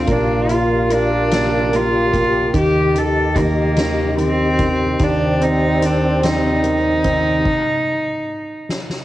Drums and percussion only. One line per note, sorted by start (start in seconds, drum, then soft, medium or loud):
0.07 kick medium
0.07 closed hi-hat medium
0.49 closed hi-hat soft
0.90 closed hi-hat medium
1.31 snare loud
1.31 closed hi-hat medium
1.73 closed hi-hat soft
2.14 kick medium
2.14 closed hi-hat medium
2.54 kick medium
2.54 closed hi-hat medium
2.96 closed hi-hat soft
3.36 kick medium
3.36 closed hi-hat medium
3.76 snare loud
3.76 closed hi-hat medium
4.18 closed hi-hat soft
4.59 kick medium
4.59 closed hi-hat medium
4.99 kick medium
4.99 closed hi-hat medium
5.41 closed hi-hat soft
5.82 closed hi-hat medium
6.23 snare loud
6.23 closed hi-hat medium
6.64 closed hi-hat soft
7.04 kick medium
7.04 closed hi-hat medium
7.45 kick medium
7.45 crash medium
8.69 snare medium
8.89 snare soft